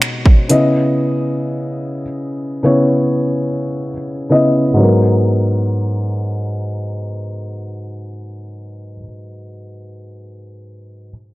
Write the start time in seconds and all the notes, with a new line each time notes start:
Already playing: B2 G#3 D#4 C5 C#5
0.02 finger snap, closed hi-hat
0.26 kick
0.49 C#3 B3 E4 D#5, closed hi-hat
2.63 C#3 B3 E4 C#5
4.30 C#3 B3 E4 D#5
4.74 G#2 F#3
4.80 B3 A#4